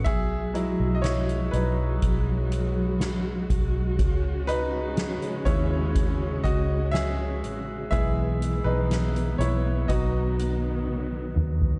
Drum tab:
HH |x-x-xxx-x-x-x-x-|x-x-xxx-x-x-x-x-|x-x-xxx-x-x-----|
SD |----o-------o---|----o-------o---|----o-----------|
T1 |----------------|----------------|------------o---|
T2 |----------------|----------------|--------------o-|
FT |----------------|----------------|---------------o|
BD |o-------o-----o-|o-----o-o-o-----|o-------o-------|